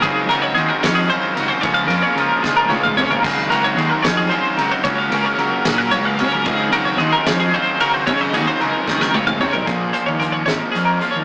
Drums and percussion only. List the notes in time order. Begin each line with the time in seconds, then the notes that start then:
0.03 kick, ride
0.31 ride
0.57 ride
0.84 kick, snare, ride
1.10 ride
1.37 ride
1.63 kick, ride
1.90 ride
2.18 ride
2.44 kick, snare
2.71 high tom
2.85 mid tom
2.99 mid tom
3.12 floor tom
3.24 kick, splash, crash
3.52 ride
3.78 ride
4.04 kick, snare, ride
4.31 ride
4.58 ride
4.85 kick, ride
5.12 ride
5.39 ride
5.65 kick, snare, ride
5.92 ride
6.19 ride
6.45 kick, ride
6.72 ride
7.00 ride
7.27 kick, snare, ride
7.54 ride
7.80 ride
8.07 kick, ride
8.34 ride
8.61 ride
8.88 kick, snare
9.01 snare
9.14 high tom
9.27 mid tom
9.41 mid tom
9.54 floor tom
9.67 kick, closed hi-hat
9.94 closed hi-hat
10.21 kick, closed hi-hat
10.48 snare, closed hi-hat
10.75 closed hi-hat
11.01 closed hi-hat